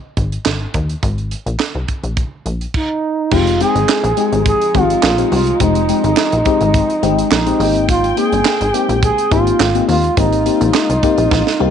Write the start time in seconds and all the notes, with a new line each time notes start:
0.17 G#1, kick, closed hi-hat
0.32 closed hi-hat
0.45 G#1, snare, clap
0.74 D#2, kick, closed hi-hat
0.89 closed hi-hat
1.03 G#1, kick, closed hi-hat
1.18 closed hi-hat
1.31 closed hi-hat
1.46 A#1, closed hi-hat
1.59 snare, clap
1.75 C2
1.88 kick, closed hi-hat
2.04 A#1, closed hi-hat
2.17 kick, closed hi-hat
2.46 A#1, closed hi-hat
2.61 closed hi-hat
2.74 D#4, kick, crash
3.31 F1 F3 G#3 C4 D#4 F4 G4, kick, crash
3.47 closed hi-hat
3.60 G#3 C4 D#4 G#4 G5, closed hi-hat
3.75 G#1, closed hi-hat
3.89 snare, clap
4.04 A#1, closed hi-hat
4.17 G#3 C4 D#4 G4, closed hi-hat
4.32 G#1, closed hi-hat
4.46 G#4, kick, closed hi-hat
4.62 closed hi-hat
4.74 G#1 G#3 C4 D#4 F4 G4, kick, closed hi-hat
4.90 closed hi-hat
5.03 A#1, snare, clap
5.18 G#3 C4 D#4 G4, closed hi-hat
5.32 C2 F4, open hi-hat
5.47 closed hi-hat
5.60 F1 G#3 C4 D#4 G4, kick, closed hi-hat
5.75 closed hi-hat
5.88 G#3 C4 D#4 G4, closed hi-hat
6.04 G#1, closed hi-hat
6.17 snare, clap
6.32 A#1, closed hi-hat
6.45 G#3 C4 D#4 G4, kick, closed hi-hat
6.61 G#1, closed hi-hat
6.74 kick, closed hi-hat
6.90 closed hi-hat
7.03 G#1 G#3 C4 D#4 G4, closed hi-hat
7.19 closed hi-hat
7.31 A#1 D#4, snare, clap
7.46 G#3 C4 D#4 G4, closed hi-hat
7.59 G#1 G#3 A#3 C4 D#4 G4 G5, open hi-hat
7.76 closed hi-hat
7.89 F4, kick, closed hi-hat
8.04 closed hi-hat
8.17 A#3 C4 D#4 G#4 G5, closed hi-hat
8.32 G1, closed hi-hat
8.45 snare, clap
8.61 G#1, closed hi-hat
8.73 A#3 C4 D#4 G4, closed hi-hat
8.89 A#1, closed hi-hat
9.03 G#4, kick, closed hi-hat
9.18 closed hi-hat
9.31 G#1 A#3 C4 D#4 F4 G4, kick, closed hi-hat
9.47 closed hi-hat
9.60 G#1, snare, clap
9.74 A#3 C4 D#4 G4, closed hi-hat
9.89 D#2 F4, open hi-hat
10.04 closed hi-hat
10.17 G#1 A#3 C4 D#4 G4, kick, closed hi-hat
10.33 closed hi-hat
10.45 A#3 C4 D#4 G4, closed hi-hat
10.61 A#1, closed hi-hat
10.74 snare, clap
10.90 C2, closed hi-hat
11.03 A#3 C4 D#4 G4, kick, closed hi-hat
11.18 A#1, closed hi-hat
11.31 A#1, kick, snare
11.47 snare
11.60 C2 A#3 C4 D#4 G4